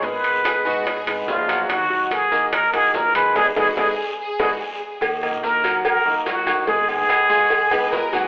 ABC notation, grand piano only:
X:1
M:4/4
L:1/8
Q:1/4=144
K:Ebm
V:1 name="Grand piano"
[A,Aa]2 [Cce] [Cce]2 [Cce]2 [G,Gg]- | [G,Gg] [G,Gg]2 [B,Be]2 [B,Be]2 [A,Aa] | [EAc] [EAc] [EAc] z2 [EAc] z2 | z [B,Be] [B,Be] [G,Gg]2 [B,Be] [G,Gg]2 |
[A,Aa]2 [Cce] [A,Aa]2 [Cce] [Cce] [G,Gg] |]